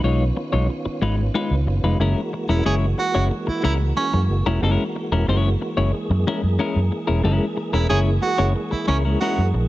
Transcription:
Already playing: tonewheel organ D#3 B3 C#4 F4
0.04 fingered electric bass B1, clean electric guitar G#3 D#4 F4 C#5
0.36 muted clean electric guitar stroke
0.52 fingered electric bass B1, clean electric guitar G#3 D#4 F4 C#5
0.69 muted clean electric guitar stroke
0.85 muted clean electric guitar stroke, muted fingered electric bass stroke
1.01 fingered electric bass G#1, clean electric guitar G#3 D#4 F4 B4
1.18 muted clean electric guitar stroke
1.34 clean electric guitar G#3 D#4 F4 B4
1.51 fingered electric bass C#2
1.66 fingered electric bass F#1, muted clean electric guitar stroke
1.83 fingered electric bass F1, clean electric guitar G#3 D#4 F4 B4
1.99 fingered electric bass F#1, tonewheel organ E3 G#3 A#3 F#4, clean electric guitar G#3 C#4 E4 A#4
2.33 muted clean electric guitar stroke
2.49 fingered electric bass E1, clean electric guitar G#3 C#4 E4 A#4, baritone saxophone E4
2.65 fingered electric bass F#1, clean electric guitar G#3 C#4 E4 C#5, baritone saxophone G#4
2.98 baritone saxophone F#4, muted clean electric guitar stroke
3.15 fingered electric bass F#1, clean electric guitar G#3 C#4 E4 C#5
3.31 muted clean electric guitar stroke
3.47 baritone saxophone E4, muted clean electric guitar stroke, muted fingered electric bass stroke
3.63 fingered electric bass C#2, clean electric guitar G#3 C#4 E4 A#4, baritone saxophone E4
3.80 muted clean electric guitar stroke
3.97 baritone saxophone C#4, muted clean electric guitar stroke
4.14 fingered electric bass F#2, muted clean electric guitar stroke
4.30 fingered electric bass F#1
4.46 fingered electric bass E1, clean electric guitar G#3 C#4 E4 A#4
4.62 fingered electric bass F#1, clean electric guitar G#3 C#4 E4 A#4
4.96 muted clean electric guitar stroke
5.12 fingered electric bass E1, clean electric guitar G#3 C#4 E4 A#4
5.28 fingered electric bass F#1, clean electric guitar G#3 C#4 E4 C#5
5.61 muted clean electric guitar stroke
5.77 fingered electric bass F#1, clean electric guitar G#3 C#4 E4 C#5
5.92 tonewheel organ G#4, muted clean electric guitar stroke
6.10 fingered electric bass F#2, muted clean electric guitar stroke
6.27 clean electric guitar G#3 C#4 E4 A#4
6.43 fingered electric bass F#2, muted clean electric guitar stroke
6.59 clean electric guitar G#3 C#4 E4 A#4
6.76 fingered electric bass F#2
6.92 muted clean electric guitar stroke
7.07 fingered electric bass E1, clean electric guitar G#3 C#4 E4 A#4
7.24 fingered electric bass F#1, clean electric guitar G#3 C#4 E4 A#4
7.57 muted clean electric guitar stroke
7.73 fingered electric bass E1, clean electric guitar G#3 C#4 E4 A#4, baritone saxophone E4
7.89 fingered electric bass F#1, clean electric guitar G#3 C#4 E4 C#5, baritone saxophone G#4
8.22 baritone saxophone F#4, muted clean electric guitar stroke
8.38 fingered electric bass F#1, clean electric guitar G#3 C#4 E4 C#5
8.55 muted clean electric guitar stroke
8.71 baritone saxophone E4, muted clean electric guitar stroke, muted fingered electric bass stroke
8.88 fingered electric bass C#2, clean electric guitar G#3 C#4 E4 A#4, baritone saxophone C#4
9.05 clean electric guitar G#3 C#4 E4 A#4
9.21 clean electric guitar G#3 C#4 E4 A#4, baritone saxophone F#4
9.38 fingered electric bass F#2
9.54 fingered electric bass A#1, muted clean electric guitar stroke

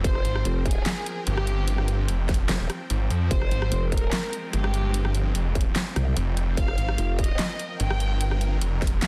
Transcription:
Already playing: supersaw synth F3 C4 G5
0.04 wobble bass F1, supersaw synth A#4, violin section C5, kick, closed hi-hat
0.15 cross-stick
0.25 detuned saw bass G#1, closed hi-hat
0.36 cross-stick
0.45 wobble bass F1, closed hi-hat
0.66 violin section G#4, kick, closed hi-hat
0.71 closed hi-hat
0.86 snare, clap, closed hi-hat
1.06 closed hi-hat
1.27 detuned saw bass G1, violin section G4, closed hi-hat
1.37 cross-stick
1.47 closed hi-hat
1.68 closed hi-hat
1.78 cross-stick
1.88 closed hi-hat
2.08 detuned saw bass F1, closed hi-hat
2.29 kick, snare, closed hi-hat
2.34 closed hi-hat
2.49 wobble bass F1, snare, clap, closed hi-hat
2.60 wobble bass D#1
2.70 cross-stick, closed hi-hat
2.90 detuned saw bass G#1, closed hi-hat
3.10 detuned saw bass F2, closed hi-hat
3.31 wobble bass F1, supersaw synth G#3, violin section C5, kick, closed hi-hat
3.42 cross-stick
3.51 detuned saw bass G#1, closed hi-hat
3.62 cross-stick
3.72 wobble bass F1, closed hi-hat
3.92 violin section A#4, kick, closed hi-hat
3.97 closed hi-hat
4.13 snare, clap, closed hi-hat
4.33 closed hi-hat
4.53 detuned saw bass G1, violin section G4, closed hi-hat
4.64 cross-stick
4.74 closed hi-hat
4.94 closed hi-hat
5.05 cross-stick
5.15 closed hi-hat
5.35 detuned saw bass F1, closed hi-hat
5.55 kick, closed hi-hat
5.61 closed hi-hat
5.76 snare, clap, closed hi-hat
5.96 wobble bass C2, cross-stick, closed hi-hat
6.17 detuned saw bass F1, closed hi-hat
6.37 closed hi-hat
6.57 wobble bass F1, supersaw synth A#4, violin section F5, kick, closed hi-hat
6.68 cross-stick
6.78 detuned saw bass G#1, closed hi-hat
6.89 cross-stick
6.98 wobble bass F1, closed hi-hat
7.19 violin section D#5, kick, closed hi-hat
7.24 closed hi-hat
7.39 snare, clap, closed hi-hat
7.59 closed hi-hat
7.80 detuned saw bass G1, violin section G5, closed hi-hat
7.91 cross-stick
8.00 closed hi-hat
8.21 closed hi-hat
8.31 cross-stick
8.41 closed hi-hat
8.61 detuned saw bass F1, closed hi-hat
8.82 kick, snare, closed hi-hat
8.87 closed hi-hat
9.02 snare, clap, closed hi-hat

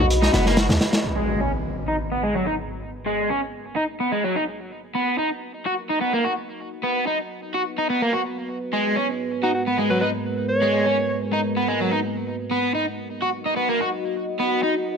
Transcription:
Already playing: 808-style bass B1, ambient pad F#4 D#5 B5
0.10 closed hi-hat
0.22 overdriven electric guitar D#4, snare
0.33 808-style bass F#1, overdriven electric guitar B3, snare, closed hi-hat, muted conga, high conga
0.46 overdriven electric guitar A#3, snare
0.57 overdriven electric guitar F#4, snare, closed hi-hat
0.69 808-style bass D#2, snare, closed hi-hat, high conga
0.81 snare, closed hi-hat
0.93 snare, closed hi-hat
1.04 ambient pad G#3 F#4 A#4 B4, impact
1.17 overdriven electric guitar G#3
1.41 overdriven electric guitar C#4
1.88 overdriven electric guitar D#4
2.12 overdriven electric guitar B3
2.23 overdriven electric guitar G#3
2.35 overdriven electric guitar F#3
2.47 overdriven electric guitar D#4
3.06 overdriven electric guitar G#3
3.30 overdriven electric guitar C#4
3.76 overdriven electric guitar D#4
4.00 overdriven electric guitar B3
4.12 overdriven electric guitar G#3
4.24 overdriven electric guitar F#3
4.36 overdriven electric guitar D#4
4.83 ambient pad A#4 D#5
4.95 overdriven electric guitar B3
5.19 overdriven electric guitar D#4
5.66 overdriven electric guitar F#4
5.89 overdriven electric guitar D#4
6.01 overdriven electric guitar B3
6.13 overdriven electric guitar A#3
6.24 overdriven electric guitar F#4
6.71 ambient pad B4
6.83 overdriven electric guitar B3
7.07 overdriven electric guitar D#4
7.54 overdriven electric guitar F#4
7.78 overdriven electric guitar D#4
7.90 overdriven electric guitar B3
8.02 overdriven electric guitar A#3
8.13 overdriven electric guitar F#4
8.60 ambient pad G#3 A#4
8.73 overdriven electric guitar G#3
8.96 overdriven electric guitar C#4
9.43 overdriven electric guitar D#4, alto saxophone F#4
9.55 alto saxophone F#4
9.68 overdriven electric guitar B3
9.78 overdriven electric guitar G#3
9.90 overdriven electric guitar F#3, alto saxophone B4
10.01 overdriven electric guitar D#4, alto saxophone B4
10.49 alto saxophone C#5
10.61 overdriven electric guitar G#3
10.85 overdriven electric guitar C#4
11.33 overdriven electric guitar D#4
11.56 overdriven electric guitar B3
11.68 overdriven electric guitar G#3
11.80 overdriven electric guitar F#3
11.91 overdriven electric guitar D#4
12.38 ambient pad F#4 D#5
12.51 overdriven electric guitar B3
12.75 overdriven electric guitar D#4
13.22 overdriven electric guitar F#4
13.46 overdriven electric guitar D#4
13.56 overdriven electric guitar B3
13.69 overdriven electric guitar A#3
13.81 overdriven electric guitar F#4
14.27 ambient pad B5
14.40 overdriven electric guitar B3
14.63 overdriven electric guitar D#4

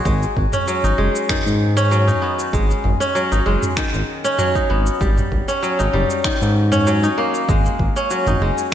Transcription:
Already playing: kora D#3 F#3 D#4 F#4 G#4
0.05 analog synth bass G#1, kora G#3, kick, cabasa
0.23 cabasa
0.37 analog synth bass G#1, kick
0.53 kora C#4, mid tom, cabasa
0.68 kora F#3, cabasa
0.84 analog synth bass G#1, kora D#4, cabasa
0.98 analog synth bass F#1, kora G#3
1.16 cabasa
1.29 kora D#3, finger snap, kick, mid tom, cabasa
1.46 analog synth bass G#2, cabasa
1.77 kora C#4, cabasa
1.91 kora F#3, cabasa
2.08 kora D#4, mid tom, cabasa
2.22 kora B3
2.39 cabasa
2.53 analog synth bass G#1, kora G#3, kick, cabasa
2.70 cabasa
2.84 analog synth bass G#1, mid tom
3.00 kora C#4, cabasa
3.15 kora F#3, cabasa
3.32 analog synth bass G#1, kora D#4, cabasa
3.46 analog synth bass F#1, kora G#3
3.62 mid tom, cabasa
3.77 kora D#3, finger snap, kick, cabasa
3.94 analog synth bass G#1, cabasa
4.24 kora C#4, cabasa
4.38 kora F#3, mid tom, cabasa
4.55 kora D#4, kick, cabasa
4.70 analog synth bass G#1, kora B3
4.87 cabasa
5.01 analog synth bass G#1, kora G3, kick, cabasa
5.17 mid tom, cabasa
5.32 analog synth bass G#1, kick
5.48 kora C#4, cabasa
5.63 kora F#3, cabasa
5.79 analog synth bass G#1, kora D#4, cabasa
5.93 analog synth bass F#1, kora G3, mid tom
6.10 cabasa
6.24 kora D#3, finger snap, kick, cabasa
6.42 analog synth bass G#2, cabasa
6.72 kora C#4, mid tom, cabasa
6.87 kora F#3, cabasa
7.03 kora D#4, cabasa
7.18 kora A#3
7.35 cabasa
7.49 analog synth bass G#1, kora G#3, kick, mid tom, cabasa
7.66 cabasa
7.79 analog synth bass G#1, kick
7.96 kora C#4, cabasa
8.11 kora F#3, cabasa
8.27 analog synth bass G#1, kora D#4, mid tom, cabasa
8.41 analog synth bass F#1, kora G#3
8.58 cabasa

